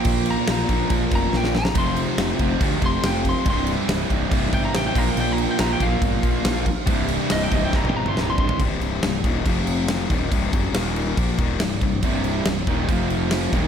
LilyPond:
<<
  \new Staff \with { instrumentName = "Lead electric guitar" } { \time 4/4 \key bes \lydian \tempo 4 = 140 g''8 bes''8 bes''4 r8 bes''8 g''8 bes''8 | c'''8 r2 c'''8 g''8 c'''8 | c'''8 r2 g''16 bes''16 g''16 g''16 bes''16 g''16 | g''16 bes''16 g''16 g''16 bes''16 g''16 f''2~ f''8 |
r4 ees''16 g''16 ees''16 g''16 bes''16 g''16 bes''16 c'''16 bes''16 c'''16 c'''8 | r1 | r1 | r1 | }
  \new Staff \with { instrumentName = "Tonewheel organ" } { \time 4/4 \key bes \lydian << { <bes c''>1 | <f g'>1 | d''2.~ d''8 <bes c''>8~ | <bes c''>1 |
<c' d''>1 | <c' d''>2 f4. d''8~ | d''4 <bes bes'>4 <c' d''>2~ | <c' d''>2 f4. d''8 | } \\ { f'1 | c'1~ | c'2.~ c'8 f'8~ | f'1 |
g'1 | g'2 c'2~ | c'4 ees'4 g'2~ | g'1 | } >> }
  \new Staff \with { instrumentName = "Distorted electric guitar" } { \clef bass \time 4/4 \key bes \lydian <bes, f bes>4. <bes, f bes>2 r8 | <f, c f>2 <f, c f>2 | <c, g, c>2 <c, g, c>4. <bes, f bes>8~ | <bes, f bes>4. <bes, f bes>2 r8 |
<c, g, c>2 <c, g, c>2 | <c, g, c>4 <c, g,>8 <ees, bes, ees>8 <f, c f>4. <ees, bes, ees>8 | <c, g, c>8 <fis, des fis>8 <ees, bes, ees>4 <bes, f bes>8 <ees, bes, ees>8 <c, g,>8 <c, g,>8 | <c, g, c>4 <c, g,>8 <ees, bes, ees>8 <f, c f>4. <ees, bes, ees>8 | }
  \new Staff \with { instrumentName = "Distorted electric guitar" } { \clef bass \time 4/4 \key bes \lydian <bes, f bes>4 <bes, f bes>2~ <bes, f bes>8 r8 | <f, c f>4. <f, c f>2~ <f, c f>8 | <c, g, c>4. <c, g, c>2 <bes, f bes>8~ | <bes, f bes>4 <bes, f bes>2~ <bes, f bes>8 r8 |
<c, g, c>4. <c, g, c>2~ <c, g, c>8 | r1 | r1 | <c, g, c>4 <c, g,>8 <ees, bes, ees>8 <f, c f>4. <ees, bes, ees>8 | }
  \new Staff \with { instrumentName = "Fingered electric bass" } { \clef bass \time 4/4 \key bes \lydian bes,,4 bes,,8 bes,,8 bes,,8 f,,8 bes,,4 | f,,4 f,,8 f,,8 d,8 f,,8 f,,4 | c,,4 c,,8 c,,8 c,,8 g,,8 a,,8 bes,,8 | bes,,4 bes,,8 bes,,8 g,,8 bes,,8 bes,,4 |
c,,4 c,,8 c,,8 c,,8 g,,8 c,,4 | c,,4 c,,8 ees,,8 f,,4. ees,,8 | c,,8 fis,,8 ees,,4 bes,,8 ees,,8 c,,8 c,,8 | c,,4 c,,8 ees,,8 f,,4. ees,,8 | }
  \new DrumStaff \with { instrumentName = "Drums" } \drummode { \time 4/4 <cymc bd>8 cymc8 <cymc sn>8 <cymc bd>8 <cymc bd>8 <cymc bd>8 sn16 sn16 sn16 sn16 | <cymc bd>8 cymc8 <cymc sn>8 <cymc bd>8 <cymc bd>8 <cymc bd>8 <cymc sn>8 <cymc bd>8 | <cymc bd>8 cymc8 <cymc sn>8 <cymc bd>8 <cymc bd>8 <cymc bd>8 <cymc sn>8 <cymc bd>8 | cymc8 cymc8 <cymc sn>8 <cymc bd>8 <cymc bd>8 <cymc bd>8 <cymc sn>8 <cymc bd>8 |
<cymc bd>8 cymc8 <cymc sn>8 <cymc bd>8 <bd sn>16 tommh8 toml16 sn8 bd16 tomfh16 | <cymc bd>8 cymc8 <cymc sn>8 <cymc bd>8 <cymc bd>8 cymc8 <cymc sn>8 <cymc bd>8 | <cymc bd>8 <cymc bd>8 <cymc sn>8 cymc8 <cymc bd>8 <cymc bd>8 <cymc sn>8 <cymc bd>8 | <cymc bd>8 cymc8 <cymc sn>8 <cymc bd>8 <cymc bd>8 cymc8 <cymc sn>8 <cymc bd sn>8 | }
>>